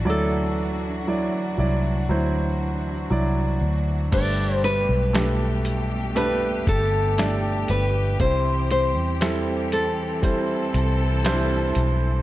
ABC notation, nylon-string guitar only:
X:1
M:4/4
L:1/8
Q:1/4=59
K:G
V:1 name="Nylon-string guitar"
A6 z2 | d B3 B A2 B | c c2 A4 z |]